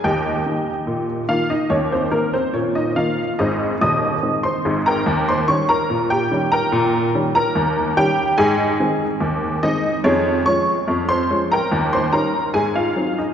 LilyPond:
<<
  \new Staff \with { instrumentName = "Honky-tonk piano" } { \time 2/4 \key aes \major \tempo 4 = 72 <g' ees'' g''>4. <f' f''>16 <ees' ees''>16 | <des' des''>16 <c' c''>16 <bes bes'>16 <c' c''>16 <des' des''>16 <ees' ees''>16 <f' f''>8 | <ees' c'' ees''>8 <ees'' ees'''>8. <c'' c'''>8 <bes' g'' bes''>16~ | <bes' g'' bes''>16 <c'' c'''>16 <des'' des'''>16 <bes' bes''>8 <g' g''>8 <bes' g'' bes''>16~ |
<bes' g'' bes''>8. <bes' bes''>8. <g' g''>8 | <aes' ees'' aes''>4 r8 <ees' ees''>8 | \key des \major <des' aes' des''>8 <des'' des'''>8. <c'' c'''>8 <bes' g'' bes''>16~ | <bes' g'' bes''>16 <c'' c'''>16 <bes' bes''>8 <aes' aes''>16 <f' f''>8 <ees' ees''>16 | }
  \new Staff \with { instrumentName = "Honky-tonk piano" } { \clef bass \time 2/4 \key aes \major ees,8 <ees bes>8 bes,8 <ees bes>8 | ees,8 ees8 bes,8 <ees bes>8 | <aes,, aes,>8 <ees,, ees,>8 <ees aes c'>8 <aes,, aes,>8 | ees,8 <ees g des'>8 bes,8 <ees g des'>8 |
bes,8 <ees g des'>8 ees,8 <ees g des'>8 | aes,8 <ees aes c'>8 ees,8 <ees aes c'>8 | \key des \major f,8 <f aes des'>8 f,8 <f aes des'>8 | ees,8 <g des' ees'>8 aes,8 <ges c' ees'>8 | }
>>